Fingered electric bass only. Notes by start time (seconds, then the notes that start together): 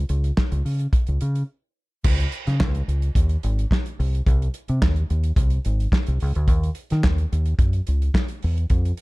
0.10 C#2
0.52 C#2
0.65 C#3
1.08 C#2
1.22 C#3
2.05 C#2
2.47 C#3
2.61 C#2
2.88 C#2
3.16 D#2
3.44 G#1
4.00 C2
4.27 C2
4.69 C3
4.82 D#2
5.10 D#2
5.37 C2
5.66 G#1
6.08 C2
6.22 C#2
6.36 D2
6.48 D#2
6.92 D#3
7.04 D#2
7.32 D#2
7.59 F#2
7.88 C#2
8.44 E2
8.71 F2